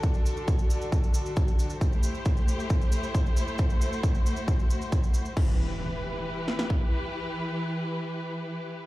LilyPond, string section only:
\new Staff \with { instrumentName = "String section" } { \time 4/4 \key e \minor \tempo 4 = 135 << { <d d' fis'>1 | <a e' c''>1~ | <a e' c''>1 | <e e' g' b'>1~ |
<e e' g' b'>1 | } \\ { a'1 | g'1 | fis'1 | r1 |
r1 | } >> }